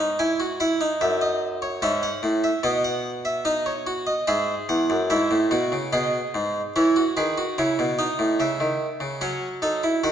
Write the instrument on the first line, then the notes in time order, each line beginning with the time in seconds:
harpsichord
Already playing: G#2
0.00 D#4
0.19 E4 G#5
0.40 F#4
0.60 E4 F#5
0.81 D#4
1.01 F#2 E5
1.21 D#5
1.62 C#5
1.82 G#2 C#4 E5
2.03 F#5
2.23 A2
2.44 E5
2.63 B2 B3 D#5
2.84 F#5
3.25 E5
3.45 D#4 D#5
3.66 C#5
3.87 F#4
4.07 D#5
4.27 G#2 G#4 E5
4.69 E2 F#5
4.90 F#2
5.10 G#2 E4 E5
5.31 A2
5.51 B2 F#4
5.72 C#3
5.93 B2 G#4 D#5
6.34 G#2
6.76 E3 E4 C#5
6.96 F#4
7.17 D#3 G#4 B4
7.38 F#4
7.58 C#3 E4 C#5
7.79 B2
7.99 D#4 D#5
8.19 A2
8.40 C#3 E5
8.60 D#3
9.00 C#3
9.21 F#3 C#4 C#5
9.62 D#4 A4
9.84 E4
10.04 D#3 F#4 F#5